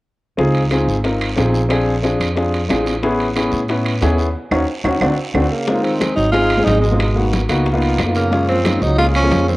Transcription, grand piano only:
0.37 C4 D#4 F4 G#4
0.71 C4 D#4 F4 G#4
1.04 C4 D#4 F4 A#4
1.36 C4 D#4 F4 G#4
1.69 C4 D4 F4 G#4
2.03 C4 D4 F4 G#4
2.35 C4 D4 F4 G#4
2.68 C4 D4 F4 G#4
3.03 B3 C#4 E4 G#4
3.35 B3 C#4 E4 G#4
3.69 B3 C#4 E4 B4
4.01 B3 C#4 E4 G#4
4.52 C#4 D#4 F#4
4.84 C#4 D#4 F#4
5.02 C4 D4 F#4
5.35 C4 D4 F#4
5.68 G#3 C4 D#4 F4
5.99 G#3 C4 D#4 G#4
6.32 G#3 C4 D#4 G#4
6.57 G#3 C4 D#4 G#4
6.91 G#3 C4 D#4 F4
7.16 A#3 B3 D#4 F#4
7.49 A#3 B3 D#4 F#4
7.73 A#3 B3 D#4 F4
8.06 A#3 B3 D#4 F4
8.31 G#3 A#3 C#4 F4
8.64 G#3 A#3 C#4 D#4
8.97 G#3 A#3 C#4 G#4
9.23 G#3 A#3 C#4 F4

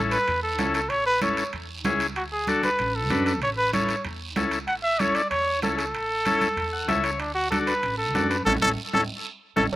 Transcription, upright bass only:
Already playing: A1
0.28 E2
0.59 C#2
0.90 A1
1.53 E2
1.85 C#2
2.17 D2
2.79 A1
3.11 F#2
3.42 A1
4.04 E2
4.36 C#2
4.68 A1
5.31 E2
5.63 C#2
5.94 A1
6.57 E2
6.89 C#2
7.20 D2
7.83 A1
8.15 F#2
8.46 A1
8.63 A1
8.94 A1
9.57 A1
9.72 A1

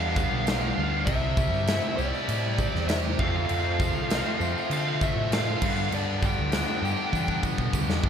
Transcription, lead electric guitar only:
Already playing: F5
1.05 E5
1.97 D5
2.88 E5
3.20 F5
4.73 F5
5.04 E5
5.33 F5
5.94 D5
6.25 G5

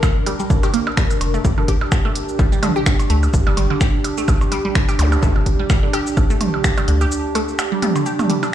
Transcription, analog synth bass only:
1.21 F1
1.45 G1
1.68 G1
2.39 A#1
3.10 D2
3.34 G1
3.57 G1
4.28 A#1
4.99 D2
5.23 G1
5.46 G1
6.17 A#1
6.88 D2

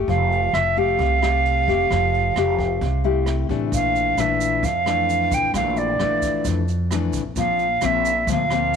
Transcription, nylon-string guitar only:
Already playing: A3 G4
0.08 F3
0.77 A3 G4
0.99 C3
1.22 A3 G4
1.68 A3 G4
1.91 F3
2.37 A3 G4
2.83 C3
3.04 A3 E4 G4
3.50 E3 A3 D4
3.73 A#2
4.19 E3 A3 D4
4.64 F2
4.86 E3 A3 D4
5.55 A#2 E3 A3 D4
6.00 E3 A3 D4
6.46 F2
6.92 E3 A3 D4
7.37 A#2 F3 A#3 C4
7.82 F3 A#3 C4
8.28 A#2 F3 A#3 C4
8.51 F3 A#3 C4

